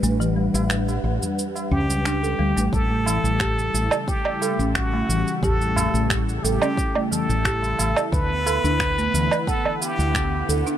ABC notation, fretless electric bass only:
X:1
M:4/4
L:1/16
Q:1/4=89
K:Amix
V:1 name="Fretless electric bass" clef=bass
A,,,3 A,,,3 A,,, z3 C,,4 D,, A,,, | A,,,3 A,,,3 A,,, z4 A,,,3 A,,, z | A,,,3 A,,,3 A,,, z4 A,,,3 A,,, z | D,,3 D,,3 D,, z4 D,,3 D,, z |]